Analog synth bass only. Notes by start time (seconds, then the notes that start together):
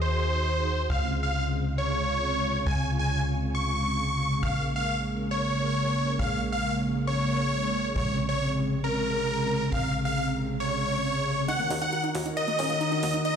Already playing: D#2
0.90 C#2
2.66 C#2
4.43 A#1
6.19 A#1
7.96 A#1
9.72 A#1
11.71 D#2
12.15 D#2
12.59 D#1
13.03 D#2